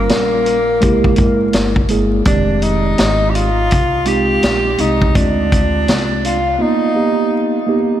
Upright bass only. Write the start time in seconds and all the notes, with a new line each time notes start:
0.09 A#1
0.83 C2
1.18 G#1
1.53 G1
1.90 G1
2.26 F1
2.99 G#1
3.72 C2
4.43 A#1
4.80 C2
5.15 D2
5.87 C2